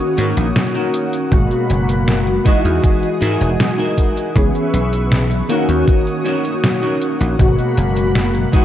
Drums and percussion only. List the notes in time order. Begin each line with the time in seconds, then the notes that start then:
0.18 closed hi-hat
0.37 closed hi-hat, cabasa
0.56 snare, closed hi-hat, cabasa
0.75 closed hi-hat, cabasa
0.94 closed hi-hat
1.13 closed hi-hat, cabasa
1.32 kick, closed hi-hat, cabasa
1.51 closed hi-hat, cabasa
1.70 closed hi-hat
1.89 closed hi-hat, cabasa
2.08 snare, closed hi-hat, cabasa
2.27 closed hi-hat, cabasa
2.46 kick, closed hi-hat
2.65 closed hi-hat, cabasa
2.84 kick, closed hi-hat, cabasa
3.03 closed hi-hat, cabasa
3.22 closed hi-hat
3.41 closed hi-hat, cabasa
3.60 snare, closed hi-hat, cabasa
3.79 closed hi-hat, cabasa
3.98 kick, closed hi-hat
4.17 closed hi-hat, cabasa
4.36 kick, closed hi-hat, cabasa
4.55 closed hi-hat, cabasa
4.74 closed hi-hat
4.93 closed hi-hat, cabasa
5.12 snare, closed hi-hat, cabasa
5.31 closed hi-hat, cabasa
5.50 closed hi-hat
5.69 closed hi-hat, cabasa
5.88 kick, closed hi-hat, cabasa
6.07 closed hi-hat, cabasa
6.26 closed hi-hat
6.45 closed hi-hat, cabasa
6.64 snare, closed hi-hat, cabasa
6.83 closed hi-hat, cabasa
7.02 closed hi-hat
7.21 closed hi-hat, cabasa
7.39 kick, closed hi-hat, cabasa
7.59 closed hi-hat, cabasa
7.77 closed hi-hat
7.96 closed hi-hat, cabasa
8.15 snare, closed hi-hat, cabasa
8.34 closed hi-hat, cabasa
8.53 kick, closed hi-hat